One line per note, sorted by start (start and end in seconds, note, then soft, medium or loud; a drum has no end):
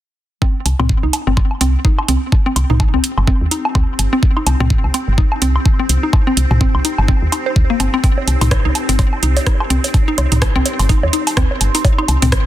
0.42 0.46 C4 loud
0.42 12.46 C4 medium
0.42 12.46 D#4 medium
0.42 kick loud
0.58 12.46 G4 medium
0.66 0.74 C2 loud
0.66 8.30 G5 medium
0.66 closed hi-hat medium
0.66 low woodblock soft
0.79 0.92 C2 loud
0.79 0.82 C4 loud
0.79 mid tom medium
0.79 high woodblock medium
0.89 kick loud
1.03 1.09 C2 medium
1.03 1.05 D#4 medium
1.13 closed hi-hat medium
1.13 low woodblock medium
1.27 1.40 G1 medium
1.27 1.30 C4 loud
1.32 12.46 C5 medium
1.37 kick loud
1.37 high woodblock medium
1.51 low woodblock soft
1.61 1.77 C2 medium
1.61 1.63 C4 loud
1.61 closed hi-hat medium
1.85 1.87 D#4 medium
1.85 kick loud
1.99 high woodblock medium
1.99 low woodblock medium
2.08 2.17 C2 medium
2.08 2.13 C4 loud
2.08 closed hi-hat medium
2.32 kick loud
2.32 low woodblock soft
2.46 2.48 C4 loud
2.56 2.64 C2 loud
2.56 closed hi-hat medium
2.56 high woodblock medium
2.70 2.83 C2 loud
2.70 2.72 D#4 medium
2.70 mid tom medium
2.80 kick loud
2.80 low woodblock medium
2.94 3.00 C2 medium
2.94 2.97 C4 loud
3.04 closed hi-hat medium
3.18 3.30 G1 medium
3.18 high woodblock medium
3.18 low woodblock soft
3.27 3.30 C4 loud
3.27 kick loud
3.41 3.47 D#2 medium
3.51 3.54 D#4 medium
3.51 closed hi-hat medium
3.65 low woodblock medium
3.75 3.83 D2 medium
3.75 3.79 C4 loud
3.75 kick loud
3.75 high woodblock medium
3.99 4.07 G1 medium
3.99 closed hi-hat medium
3.99 low woodblock soft
4.13 4.15 C4 loud
4.23 kick loud
4.37 4.39 D#4 medium
4.37 high woodblock medium
4.46 4.55 C2 loud
4.46 closed hi-hat medium
4.46 low woodblock medium
4.60 4.73 C2 loud
4.60 4.63 C4 loud
4.60 mid tom medium
4.70 kick loud
4.84 4.90 C2 medium
4.84 low woodblock soft
4.94 4.97 C4 loud
4.94 closed hi-hat loud
4.94 high woodblock medium
5.08 5.21 G1 medium
5.18 5.20 D#4 medium
5.18 kick loud
5.32 low woodblock medium
5.42 5.58 C2 medium
5.42 5.46 C4 loud
5.42 closed hi-hat medium
5.56 high woodblock medium
5.66 kick loud
5.66 low woodblock soft
5.79 5.81 C4 loud
5.89 5.98 C2 medium
5.89 closed hi-hat medium
6.03 6.05 D#4 medium
6.13 kick loud
6.13 high woodblock medium
6.13 low woodblock medium
6.27 6.30 C4 loud
6.37 6.45 C2 loud
6.37 closed hi-hat medium
6.51 6.64 C2 loud
6.51 mid tom medium
6.51 low woodblock soft
6.61 6.63 C4 loud
6.61 kick loud
6.75 6.81 C2 medium
6.75 high woodblock medium
6.85 6.87 D#4 medium
6.85 closed hi-hat medium
6.98 7.11 G1 medium
6.98 low woodblock medium
7.08 7.13 C4 loud
7.08 kick loud
7.22 7.28 D#2 medium
7.32 7.36 D#4 medium
7.32 closed hi-hat medium
7.32 high woodblock medium
7.32 low woodblock soft
7.46 7.49 C5 medium
7.56 7.64 D2 medium
7.56 kick loud
7.70 7.74 A#3 loud
7.80 7.88 G1 medium
7.80 7.86 C4 loud
7.80 closed hi-hat medium
7.80 low woodblock medium
7.94 7.96 C4 loud
7.94 high woodblock medium
8.04 8.08 C4 loud
8.04 kick loud
8.04 closed hi-hat soft
8.18 high bongo soft
8.27 8.36 C2 loud
8.27 12.46 C6 medium
8.27 closed hi-hat medium
8.27 low woodblock soft
8.41 8.54 C2 loud
8.41 8.44 D#4 medium
8.41 closed hi-hat soft
8.41 mid tom medium
8.41 high woodblock medium
8.51 kick loud
8.51 cross-stick medium
8.51 closed hi-hat soft
8.51 high bongo medium
8.65 8.71 C2 medium
8.65 8.67 D#4 medium
8.75 closed hi-hat medium
8.75 low woodblock medium
8.89 9.02 G1 medium
8.89 8.92 C4 loud
8.89 closed hi-hat soft
8.99 kick loud
8.99 closed hi-hat soft
8.99 high bongo soft
8.99 high woodblock medium
9.13 low woodblock soft
9.23 9.39 C2 medium
9.23 9.27 D#4 medium
9.23 closed hi-hat medium
9.37 closed hi-hat soft
9.37 high bongo medium
9.46 9.49 D#4 medium
9.46 kick loud
9.46 cross-stick medium
9.46 closed hi-hat soft
9.60 high woodblock medium
9.60 low woodblock medium
9.70 9.79 C2 medium
9.70 9.74 C4 loud
9.70 closed hi-hat medium
9.84 closed hi-hat soft
9.84 high bongo soft
9.94 kick loud
9.94 closed hi-hat soft
9.94 low woodblock soft
10.08 10.11 D#4 medium
10.18 10.26 C2 loud
10.18 closed hi-hat medium
10.18 high bongo medium
10.18 high woodblock medium
10.32 10.45 C2 loud
10.32 10.34 D#4 medium
10.32 closed hi-hat soft
10.32 mid tom medium
10.42 kick loud
10.42 cross-stick medium
10.42 closed hi-hat soft
10.42 low woodblock medium
10.56 10.62 C2 medium
10.56 10.59 C4 loud
10.66 closed hi-hat medium
10.66 high bongo soft
10.79 10.92 G1 medium
10.79 closed hi-hat medium
10.79 high woodblock medium
10.79 low woodblock soft
10.89 10.94 D#4 medium
10.89 kick loud
10.89 closed hi-hat soft
11.03 11.09 D#2 medium
11.03 high bongo medium
11.13 11.16 D#4 medium
11.13 closed hi-hat medium
11.27 closed hi-hat medium
11.27 low woodblock medium
11.37 11.45 D2 medium
11.37 11.41 C4 loud
11.37 kick loud
11.37 cross-stick medium
11.37 closed hi-hat soft
11.37 high woodblock medium
11.51 high bongo soft
11.61 11.69 G1 medium
11.61 closed hi-hat medium
11.61 low woodblock soft
11.75 11.78 D#4 medium
11.75 closed hi-hat medium
11.85 kick loud
11.85 closed hi-hat soft
11.85 high bongo medium
11.98 12.01 D#4 medium
11.98 high woodblock medium
12.08 12.17 C2 loud
12.08 closed hi-hat medium
12.08 low woodblock medium
12.22 12.35 C2 loud
12.22 12.25 C4 loud
12.22 closed hi-hat medium
12.22 mid tom medium
12.32 kick loud
12.32 cross-stick medium
12.32 closed hi-hat soft
12.32 high bongo soft